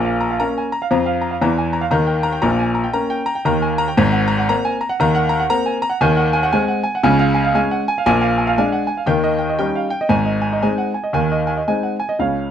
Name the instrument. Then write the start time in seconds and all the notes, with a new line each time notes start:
grand piano
Already playing: A#1 A#2 A#5
0.05 F5
0.21 A#5
0.31 F5
0.40 A#3 C#4 A#5
0.58 G#5
0.72 A#5
0.82 F5
0.91 F2 F3 A#5
1.06 F5
1.21 A#5
1.31 F5
1.42 E2 E3 A#5
1.58 G#5
1.73 A#5
1.81 F5
1.91 D#2 D#3 A#5
2.07 G5
2.23 A#5
2.33 G5
2.42 A#1 A#2 A#5
2.59 G#5
2.75 A#5
2.84 G5
2.93 A#3 C#4 A#5
3.10 G5
3.26 A#5
3.35 G5
3.45 D#2 D#3 A#5
3.62 G#5
3.78 A#5
3.88 G5
3.97 G#1 G#2 A#5
4.12 F#5
4.28 A#5
4.38 F#5
4.49 A#3 C4 A#5
4.65 G#5
4.81 A#5
4.89 F#5
5.00 D#2 D#3 A#5
5.15 F#5
5.29 A#5
5.40 F#5
5.50 A#3 C4 A#5
5.66 G#5
5.82 A#5
5.90 F#5
6.01 D#2 D#3 G#5
6.17 F#5
6.33 G#5
6.43 F#5
6.53 G#3 C4 G#5
6.68 F#5
6.83 G#5
6.95 F#5
7.03 C#2 C#3 G#5
7.19 F5
7.34 G#5
7.44 F5
7.54 G#3 C#4 G#5
7.71 F#5
7.88 G#5
7.98 F5
8.06 A#1 A#2 G#5
8.22 F5
8.38 G#5
8.47 F5
8.58 G#3 D4 G#5
8.72 F#5
8.87 G#5
8.97 F5
9.06 D#2 D#3 G5
9.24 D#5
9.38 G5
9.49 D#5
9.59 G3 C#4 D#4 G5
9.75 F5
9.90 G5
10.01 D#5
10.09 G#1 G#2 G#5
10.25 D#5
10.42 G#5
10.53 D#5
10.62 G#3 C4 D#4 G#5
10.78 F#5
10.94 G#5
11.04 D#5
11.13 D#2 D#3 G#5
11.32 D#5
11.47 G#5
11.57 D#5
11.68 G#3 C4 D#4 G#5
11.83 F#5
12.00 G#5
12.09 D#5
12.19 C#2 C#3 C#5 F5